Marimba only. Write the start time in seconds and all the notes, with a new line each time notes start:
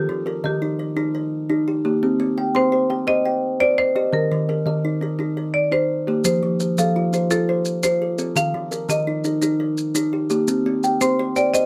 Already playing: G4
0.46 G4
2.56 C5
3.08 D#5
3.60 D5
3.78 C5
4.13 A#4
5.54 D5
5.72 C5
6.25 C5
6.78 A4
7.31 A4
7.83 C5
8.37 F5
8.90 D#5
11.01 C5
11.36 D5
11.54 D#5